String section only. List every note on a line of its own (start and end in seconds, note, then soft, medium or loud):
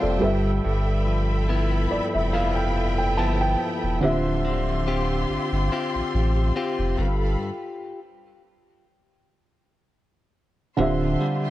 0.00 0.19 G4 medium
0.00 7.36 E5 medium
0.00 1.87 G5 medium
0.00 0.19 C6 medium
0.22 3.99 A4 medium
0.22 3.98 B5 medium
1.91 4.00 G5 medium
4.02 6.95 F4 medium
4.02 6.95 G4 medium
4.02 6.95 C6 medium
6.98 7.40 A4 medium
6.98 7.40 F5 medium
6.98 7.40 B5 medium
10.79 11.50 F4 medium
10.79 11.50 G4 medium
10.79 11.50 E5 medium
10.79 11.50 C6 medium